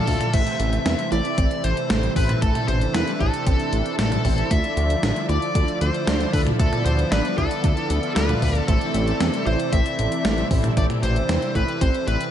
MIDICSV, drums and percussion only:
0, 0, Header, 1, 2, 480
1, 0, Start_track
1, 0, Key_signature, 0, "minor"
1, 0, Tempo, 521739
1, 308, Time_signature, 4, 2, 24, 8
1, 11324, End_track
2, 0, Start_track
2, 0, Title_t, "Drums"
2, 69, Note_on_c, 9, 36, 59
2, 69, Note_on_c, 9, 46, 81
2, 161, Note_off_c, 9, 36, 0
2, 161, Note_off_c, 9, 46, 0
2, 190, Note_on_c, 9, 42, 42
2, 190, Note_on_c, 9, 45, 87
2, 282, Note_off_c, 9, 42, 0
2, 282, Note_off_c, 9, 45, 0
2, 309, Note_on_c, 9, 36, 123
2, 309, Note_on_c, 9, 42, 98
2, 309, Note_on_c, 9, 49, 78
2, 401, Note_off_c, 9, 36, 0
2, 401, Note_off_c, 9, 42, 0
2, 401, Note_off_c, 9, 49, 0
2, 429, Note_on_c, 9, 42, 43
2, 521, Note_off_c, 9, 42, 0
2, 549, Note_on_c, 9, 42, 72
2, 641, Note_off_c, 9, 42, 0
2, 669, Note_on_c, 9, 42, 43
2, 761, Note_off_c, 9, 42, 0
2, 789, Note_on_c, 9, 38, 123
2, 789, Note_on_c, 9, 42, 96
2, 881, Note_off_c, 9, 38, 0
2, 881, Note_off_c, 9, 42, 0
2, 909, Note_on_c, 9, 42, 43
2, 1001, Note_off_c, 9, 42, 0
2, 1029, Note_on_c, 9, 42, 37
2, 1121, Note_off_c, 9, 42, 0
2, 1149, Note_on_c, 9, 42, 40
2, 1241, Note_off_c, 9, 42, 0
2, 1268, Note_on_c, 9, 42, 96
2, 1269, Note_on_c, 9, 36, 118
2, 1360, Note_off_c, 9, 42, 0
2, 1361, Note_off_c, 9, 36, 0
2, 1389, Note_on_c, 9, 42, 43
2, 1481, Note_off_c, 9, 42, 0
2, 1509, Note_on_c, 9, 42, 72
2, 1601, Note_off_c, 9, 42, 0
2, 1629, Note_on_c, 9, 42, 44
2, 1721, Note_off_c, 9, 42, 0
2, 1748, Note_on_c, 9, 38, 123
2, 1748, Note_on_c, 9, 42, 98
2, 1840, Note_off_c, 9, 38, 0
2, 1840, Note_off_c, 9, 42, 0
2, 1869, Note_on_c, 9, 42, 43
2, 1961, Note_off_c, 9, 42, 0
2, 1989, Note_on_c, 9, 36, 104
2, 1990, Note_on_c, 9, 46, 81
2, 2081, Note_off_c, 9, 36, 0
2, 2082, Note_off_c, 9, 46, 0
2, 2109, Note_on_c, 9, 42, 45
2, 2109, Note_on_c, 9, 45, 95
2, 2201, Note_off_c, 9, 42, 0
2, 2201, Note_off_c, 9, 45, 0
2, 2228, Note_on_c, 9, 42, 99
2, 2229, Note_on_c, 9, 36, 127
2, 2320, Note_off_c, 9, 42, 0
2, 2321, Note_off_c, 9, 36, 0
2, 2349, Note_on_c, 9, 42, 43
2, 2349, Note_on_c, 9, 45, 89
2, 2441, Note_off_c, 9, 42, 0
2, 2441, Note_off_c, 9, 45, 0
2, 2468, Note_on_c, 9, 42, 70
2, 2560, Note_off_c, 9, 42, 0
2, 2589, Note_on_c, 9, 42, 44
2, 2681, Note_off_c, 9, 42, 0
2, 2709, Note_on_c, 9, 38, 127
2, 2709, Note_on_c, 9, 42, 101
2, 2801, Note_off_c, 9, 38, 0
2, 2801, Note_off_c, 9, 42, 0
2, 2829, Note_on_c, 9, 42, 43
2, 2921, Note_off_c, 9, 42, 0
2, 2949, Note_on_c, 9, 36, 67
2, 2949, Note_on_c, 9, 42, 38
2, 3041, Note_off_c, 9, 36, 0
2, 3041, Note_off_c, 9, 42, 0
2, 3069, Note_on_c, 9, 42, 42
2, 3161, Note_off_c, 9, 42, 0
2, 3189, Note_on_c, 9, 36, 121
2, 3189, Note_on_c, 9, 42, 93
2, 3281, Note_off_c, 9, 36, 0
2, 3281, Note_off_c, 9, 42, 0
2, 3309, Note_on_c, 9, 42, 41
2, 3401, Note_off_c, 9, 42, 0
2, 3429, Note_on_c, 9, 42, 70
2, 3521, Note_off_c, 9, 42, 0
2, 3548, Note_on_c, 9, 42, 44
2, 3640, Note_off_c, 9, 42, 0
2, 3669, Note_on_c, 9, 38, 124
2, 3669, Note_on_c, 9, 42, 98
2, 3761, Note_off_c, 9, 38, 0
2, 3761, Note_off_c, 9, 42, 0
2, 3789, Note_on_c, 9, 42, 42
2, 3789, Note_on_c, 9, 45, 89
2, 3881, Note_off_c, 9, 42, 0
2, 3881, Note_off_c, 9, 45, 0
2, 3908, Note_on_c, 9, 36, 66
2, 3908, Note_on_c, 9, 46, 81
2, 4000, Note_off_c, 9, 36, 0
2, 4000, Note_off_c, 9, 46, 0
2, 4029, Note_on_c, 9, 42, 43
2, 4121, Note_off_c, 9, 42, 0
2, 4148, Note_on_c, 9, 36, 127
2, 4148, Note_on_c, 9, 42, 95
2, 4240, Note_off_c, 9, 36, 0
2, 4240, Note_off_c, 9, 42, 0
2, 4269, Note_on_c, 9, 42, 41
2, 4361, Note_off_c, 9, 42, 0
2, 4389, Note_on_c, 9, 42, 69
2, 4481, Note_off_c, 9, 42, 0
2, 4509, Note_on_c, 9, 42, 43
2, 4601, Note_off_c, 9, 42, 0
2, 4629, Note_on_c, 9, 38, 127
2, 4629, Note_on_c, 9, 42, 98
2, 4721, Note_off_c, 9, 38, 0
2, 4721, Note_off_c, 9, 42, 0
2, 4749, Note_on_c, 9, 42, 42
2, 4841, Note_off_c, 9, 42, 0
2, 4869, Note_on_c, 9, 42, 38
2, 4961, Note_off_c, 9, 42, 0
2, 4989, Note_on_c, 9, 42, 41
2, 5081, Note_off_c, 9, 42, 0
2, 5108, Note_on_c, 9, 36, 126
2, 5108, Note_on_c, 9, 42, 97
2, 5200, Note_off_c, 9, 36, 0
2, 5200, Note_off_c, 9, 42, 0
2, 5228, Note_on_c, 9, 42, 41
2, 5320, Note_off_c, 9, 42, 0
2, 5348, Note_on_c, 9, 42, 68
2, 5440, Note_off_c, 9, 42, 0
2, 5469, Note_on_c, 9, 42, 42
2, 5561, Note_off_c, 9, 42, 0
2, 5588, Note_on_c, 9, 38, 127
2, 5588, Note_on_c, 9, 42, 100
2, 5680, Note_off_c, 9, 38, 0
2, 5680, Note_off_c, 9, 42, 0
2, 5709, Note_on_c, 9, 42, 43
2, 5801, Note_off_c, 9, 42, 0
2, 5828, Note_on_c, 9, 36, 112
2, 5828, Note_on_c, 9, 46, 77
2, 5920, Note_off_c, 9, 36, 0
2, 5920, Note_off_c, 9, 46, 0
2, 5949, Note_on_c, 9, 42, 42
2, 5949, Note_on_c, 9, 45, 93
2, 6041, Note_off_c, 9, 42, 0
2, 6041, Note_off_c, 9, 45, 0
2, 6068, Note_on_c, 9, 36, 127
2, 6068, Note_on_c, 9, 42, 91
2, 6160, Note_off_c, 9, 36, 0
2, 6160, Note_off_c, 9, 42, 0
2, 6189, Note_on_c, 9, 42, 41
2, 6189, Note_on_c, 9, 45, 96
2, 6281, Note_off_c, 9, 42, 0
2, 6281, Note_off_c, 9, 45, 0
2, 6308, Note_on_c, 9, 42, 64
2, 6400, Note_off_c, 9, 42, 0
2, 6429, Note_on_c, 9, 42, 41
2, 6521, Note_off_c, 9, 42, 0
2, 6548, Note_on_c, 9, 38, 127
2, 6548, Note_on_c, 9, 42, 95
2, 6640, Note_off_c, 9, 38, 0
2, 6640, Note_off_c, 9, 42, 0
2, 6669, Note_on_c, 9, 42, 40
2, 6761, Note_off_c, 9, 42, 0
2, 6788, Note_on_c, 9, 36, 65
2, 6788, Note_on_c, 9, 42, 36
2, 6880, Note_off_c, 9, 36, 0
2, 6880, Note_off_c, 9, 42, 0
2, 6908, Note_on_c, 9, 42, 39
2, 7000, Note_off_c, 9, 42, 0
2, 7027, Note_on_c, 9, 42, 94
2, 7028, Note_on_c, 9, 36, 127
2, 7119, Note_off_c, 9, 42, 0
2, 7120, Note_off_c, 9, 36, 0
2, 7148, Note_on_c, 9, 42, 38
2, 7240, Note_off_c, 9, 42, 0
2, 7268, Note_on_c, 9, 42, 67
2, 7360, Note_off_c, 9, 42, 0
2, 7389, Note_on_c, 9, 42, 41
2, 7481, Note_off_c, 9, 42, 0
2, 7508, Note_on_c, 9, 38, 125
2, 7508, Note_on_c, 9, 42, 92
2, 7600, Note_off_c, 9, 38, 0
2, 7600, Note_off_c, 9, 42, 0
2, 7629, Note_on_c, 9, 42, 40
2, 7629, Note_on_c, 9, 45, 93
2, 7721, Note_off_c, 9, 42, 0
2, 7721, Note_off_c, 9, 45, 0
2, 7748, Note_on_c, 9, 36, 64
2, 7749, Note_on_c, 9, 46, 75
2, 7840, Note_off_c, 9, 36, 0
2, 7841, Note_off_c, 9, 46, 0
2, 7869, Note_on_c, 9, 42, 41
2, 7961, Note_off_c, 9, 42, 0
2, 7988, Note_on_c, 9, 36, 120
2, 7988, Note_on_c, 9, 42, 88
2, 8080, Note_off_c, 9, 36, 0
2, 8080, Note_off_c, 9, 42, 0
2, 8109, Note_on_c, 9, 42, 39
2, 8201, Note_off_c, 9, 42, 0
2, 8229, Note_on_c, 9, 42, 65
2, 8321, Note_off_c, 9, 42, 0
2, 8349, Note_on_c, 9, 42, 40
2, 8441, Note_off_c, 9, 42, 0
2, 8469, Note_on_c, 9, 38, 124
2, 8469, Note_on_c, 9, 42, 92
2, 8561, Note_off_c, 9, 38, 0
2, 8561, Note_off_c, 9, 42, 0
2, 8589, Note_on_c, 9, 42, 39
2, 8681, Note_off_c, 9, 42, 0
2, 8708, Note_on_c, 9, 42, 36
2, 8800, Note_off_c, 9, 42, 0
2, 8828, Note_on_c, 9, 42, 39
2, 8920, Note_off_c, 9, 42, 0
2, 8948, Note_on_c, 9, 36, 118
2, 8948, Note_on_c, 9, 42, 91
2, 9040, Note_off_c, 9, 36, 0
2, 9040, Note_off_c, 9, 42, 0
2, 9069, Note_on_c, 9, 42, 39
2, 9161, Note_off_c, 9, 42, 0
2, 9189, Note_on_c, 9, 42, 65
2, 9281, Note_off_c, 9, 42, 0
2, 9309, Note_on_c, 9, 42, 40
2, 9401, Note_off_c, 9, 42, 0
2, 9429, Note_on_c, 9, 38, 126
2, 9429, Note_on_c, 9, 42, 92
2, 9521, Note_off_c, 9, 38, 0
2, 9521, Note_off_c, 9, 42, 0
2, 9549, Note_on_c, 9, 42, 38
2, 9641, Note_off_c, 9, 42, 0
2, 9668, Note_on_c, 9, 36, 108
2, 9668, Note_on_c, 9, 46, 75
2, 9760, Note_off_c, 9, 36, 0
2, 9760, Note_off_c, 9, 46, 0
2, 9788, Note_on_c, 9, 42, 41
2, 9788, Note_on_c, 9, 45, 96
2, 9880, Note_off_c, 9, 42, 0
2, 9880, Note_off_c, 9, 45, 0
2, 9908, Note_on_c, 9, 36, 116
2, 9908, Note_on_c, 9, 42, 88
2, 10000, Note_off_c, 9, 36, 0
2, 10000, Note_off_c, 9, 42, 0
2, 10028, Note_on_c, 9, 42, 39
2, 10028, Note_on_c, 9, 45, 99
2, 10120, Note_off_c, 9, 42, 0
2, 10120, Note_off_c, 9, 45, 0
2, 10148, Note_on_c, 9, 42, 64
2, 10240, Note_off_c, 9, 42, 0
2, 10269, Note_on_c, 9, 42, 41
2, 10361, Note_off_c, 9, 42, 0
2, 10388, Note_on_c, 9, 38, 122
2, 10388, Note_on_c, 9, 42, 95
2, 10480, Note_off_c, 9, 38, 0
2, 10480, Note_off_c, 9, 42, 0
2, 10509, Note_on_c, 9, 42, 39
2, 10601, Note_off_c, 9, 42, 0
2, 10628, Note_on_c, 9, 36, 60
2, 10629, Note_on_c, 9, 42, 35
2, 10720, Note_off_c, 9, 36, 0
2, 10721, Note_off_c, 9, 42, 0
2, 10749, Note_on_c, 9, 42, 37
2, 10841, Note_off_c, 9, 42, 0
2, 10868, Note_on_c, 9, 36, 113
2, 10869, Note_on_c, 9, 42, 90
2, 10960, Note_off_c, 9, 36, 0
2, 10961, Note_off_c, 9, 42, 0
2, 10989, Note_on_c, 9, 42, 37
2, 11081, Note_off_c, 9, 42, 0
2, 11109, Note_on_c, 9, 42, 65
2, 11201, Note_off_c, 9, 42, 0
2, 11230, Note_on_c, 9, 42, 40
2, 11322, Note_off_c, 9, 42, 0
2, 11324, End_track
0, 0, End_of_file